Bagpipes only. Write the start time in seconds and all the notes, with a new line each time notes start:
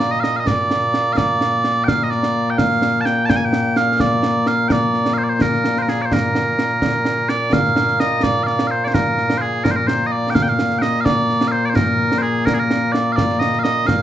Already playing: A#2 A#3 D5
0.11 D#5
0.20 D#5 F5
0.36 D#5 F5
0.47 D5
1.13 F5
1.17 D5
1.84 F5 G5
2.04 D#5
2.10 D5
2.50 G5
2.58 F5
3.01 A5
3.05 G5
3.26 A5
3.30 G5
3.36 G#5
3.45 G5
3.77 F5
4.01 D5
4.48 F5
4.68 D5 G5
5.14 F5
5.18 C5
5.24 D5
5.29 C5
5.34 C5
5.42 A#4
5.78 A#4 C5
5.89 G#4
6.02 C5 D5
6.13 A#4
7.29 D5
7.53 F5
8.00 D#5
8.23 D5
8.44 D5 F5
8.67 C5 F5
8.84 C5 D5
8.94 A#4
9.38 G#4 C5
9.64 A#4
9.71 C5
9.76 A#4
9.87 C5
10.06 D#5
10.12 D5
10.30 G5
10.35 F5
10.42 G5
10.49 F5
10.78 D#5 G5
11.01 F5
11.05 D5
11.48 C5 F5
11.65 D5
11.69 C5
11.75 A#4
12.18 C5
12.22 G#4
12.46 A#4
12.54 G#4
12.59 A#4
12.92 D5
13.12 D5 F5
13.39 D#5
13.59 F5
13.64 D#5
13.87 F5